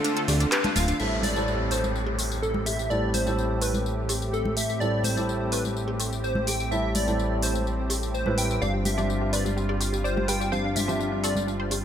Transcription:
Already playing: D3 A3 C4 D4 F4 A4 C5
0.04 D4, closed hi-hat, ride, tambourine
0.17 A4, closed hi-hat
0.28 D2 D4, snare, open hi-hat, ride, tambourine, cowbell, high woodblock
0.40 D4, snare, closed hi-hat, tambourine
0.52 G4 B4, clap, closed hi-hat, ride, tambourine
0.64 D4, snare, closed hi-hat, ride, high conga
0.75 D1 F4 F5, snare, open hi-hat, ride, tambourine
0.88 D4, closed hi-hat, ride, tambourine
1.00 A1 A2 G3 A3 C4 E4 G4 A4 E5, crash, tambourine, downlifter
1.23 D5, open hi-hat, tambourine, high conga
1.36 A2 G3 C4 E4 A4, tambourine
1.48 tambourine
1.71 C5, open hi-hat, tambourine, high woodblock
1.84 tambourine, high conga
1.96 tambourine
2.07 cowbell
2.18 open hi-hat, tambourine, high woodblock
2.32 tambourine
2.42 A4, tambourine
2.54 high conga
2.66 E5, open hi-hat, tambourine, cowbell
2.79 tambourine
2.90 A2 G3 C4 E4 A4 D5, tambourine
3.14 C5, open hi-hat, tambourine, high conga
3.26 A2 G3 C4 E4 A4, tambourine
3.38 tambourine
3.62 B4, open hi-hat, tambourine, high woodblock
3.74 tambourine, high conga
3.86 tambourine
4.09 open hi-hat, tambourine, cowbell, high woodblock
4.22 tambourine
4.33 A4, tambourine
4.45 high conga
4.57 E5, open hi-hat, tambourine
4.70 tambourine
4.80 A2 G3 C4 E4 A4 D5, tambourine
5.04 C5, open hi-hat, tambourine, high conga
5.17 A2 G3 C4 E4 A4, tambourine
5.29 tambourine
5.52 B4, open hi-hat, tambourine, high woodblock
5.65 tambourine, high conga
5.77 tambourine
5.88 cowbell
6.00 open hi-hat, tambourine, high woodblock
6.13 tambourine
6.24 C5, tambourine
6.35 high conga
6.47 G5, open hi-hat, tambourine, cowbell
6.60 tambourine
6.71 A2 G3 C4 E4 A4 E5, tambourine
6.95 D5, open hi-hat, tambourine, high conga
7.07 A2 G3 C4 E4 A4, tambourine
7.19 tambourine
7.42 C5, open hi-hat, tambourine, high woodblock
7.55 tambourine, high conga
7.67 tambourine
7.90 open hi-hat, tambourine, cowbell, high woodblock
8.03 tambourine
8.14 C5, tambourine
8.26 A2 G3 C4 E4 B4, high conga
8.38 G5, open hi-hat, tambourine
8.51 tambourine
8.62 G1 G2 F3 G3 C4 D4 F4 G4 D5 F5, tambourine
8.74 G4
8.85 G4 E5, open hi-hat, tambourine, high conga
8.98 G2 F3 C4 D4 G4 D5, tambourine
9.09 G4, tambourine
9.21 G4
9.33 B4 D5, open hi-hat, tambourine, high woodblock
9.45 G4, tambourine, high conga
9.57 G4, tambourine
9.69 D5, cowbell
9.80 G4, open hi-hat, tambourine, high woodblock
9.93 G4, tambourine
10.04 C5 D5, tambourine
10.17 G4, high conga
10.28 B4 G5, open hi-hat, tambourine, cowbell
10.40 G4, tambourine
10.52 G2 F3 C4 D4 G4 C5 F5, tambourine
10.64 D4
10.76 D4 E5, open hi-hat, tambourine, high conga
10.88 G2 F3 C4 D4 G4 C5, tambourine
11.00 D4, tambourine
11.12 D4
11.24 A4 D5, open hi-hat, tambourine, high woodblock
11.36 D4, tambourine, high conga
11.47 D4, tambourine
11.60 C5
11.71 D4, open hi-hat, tambourine, cowbell, high woodblock

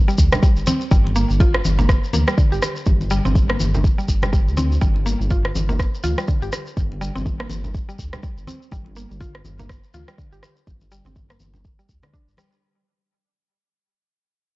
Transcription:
0.08 G3, shekere
0.18 D2, kick, shekere
0.32 G3, cross-stick, muted conga, low conga, shekere
0.43 G3, kick, shekere
0.56 G1, shekere
0.67 C4, muted conga, high conga, shekere
0.81 shekere
0.91 G1 G3, kick, high conga, shekere
1.07 muted conga
1.16 A#3, shekere
1.30 G1, shekere
1.40 F4, kick, muted conga, high conga, shekere
1.54 cross-stick
1.65 G1, high conga, shekere
1.79 A#3, low conga, shekere
1.89 kick, cross-stick, muted conga, shekere
2.04 shekere
2.13 D2 A#3, high conga, shekere
2.27 G3, cross-stick, muted conga, shekere
2.38 D3, kick, shekere
2.52 G1 G4, shekere
2.62 cross-stick, muted conga, shekere
2.76 shekere
2.86 G1, kick, high conga, shekere
3.01 muted conga, shekere
3.10 G3, shekere
3.25 G1 C4, high conga, low conga, shekere
3.35 kick, muted conga, high conga, shekere
3.49 A#3, cross-stick
3.60 G1, high conga, shekere
3.74 low conga, shekere
3.84 kick, muted conga, shekere
3.98 G3, shekere
4.08 G1, kick, shekere
4.22 G3, cross-stick, muted conga, low conga, shekere
4.33 G3, kick, shekere
4.47 D2, shekere
4.57 C4, muted conga, high conga, shekere
4.72 shekere
4.81 G1 G3, kick, high conga, shekere
4.96 muted conga
5.06 A#3, shekere
5.20 G1, shekere
5.30 F4, kick, muted conga, high conga, shekere
5.45 cross-stick
5.55 G1, high conga, shekere
5.69 A#3, low conga, shekere
5.79 kick, cross-stick, muted conga, shekere
5.94 shekere
6.03 D2 F4, high conga, shekere
6.18 G3, cross-stick, muted conga, shekere
6.28 D3, kick, shekere
6.42 G1 G4, shekere
6.52 cross-stick, muted conga, shekere
6.66 shekere
6.77 G1, kick, high conga, shekere
6.92 muted conga
7.01 G3, shekere
7.15 G1 C4, high conga, low conga, shekere
7.26 kick, muted conga, high conga, shekere
7.40 A#3, cross-stick
7.50 G1, high conga, shekere
7.64 low conga, shekere
7.74 kick, muted conga, shekere
7.89 G3, shekere
7.99 D2, kick, shekere
8.13 G3, cross-stick, muted conga, low conga, shekere
8.23 G3, kick, shekere
8.37 G1, shekere
8.47 C4, muted conga, high conga, shekere
8.62 shekere
8.71 G1 G3, kick, high conga, shekere
8.86 muted conga
8.96 A#3, shekere
9.11 G1, shekere
9.20 F4, kick, muted conga, high conga, shekere
9.35 cross-stick
9.45 G1, high conga, shekere
9.59 A#3, low conga, shekere
9.69 kick, cross-stick, muted conga, shekere
9.84 shekere
9.94 D2 F4, high conga, shekere
10.08 G3, cross-stick, muted conga, shekere
10.18 D3, kick, shekere
10.32 G1 G4, shekere
10.43 cross-stick, muted conga, shekere
10.56 shekere
10.67 G1, kick, high conga, shekere
10.81 muted conga, shekere
10.91 G3, shekere
11.05 G1 C4, high conga, low conga, shekere
11.16 kick, muted conga, high conga, shekere
11.30 A#3, cross-stick, shekere
11.40 G1, high conga, shekere
11.54 low conga, shekere
11.64 kick, muted conga, shekere
11.79 G3, shekere
11.89 D2, kick, shekere
12.03 D3, cross-stick, muted conga, low conga, shekere
12.14 D4, kick, shekere
12.28 G1, shekere
12.37 G3, cross-stick, muted conga, high conga, shekere
12.52 shekere

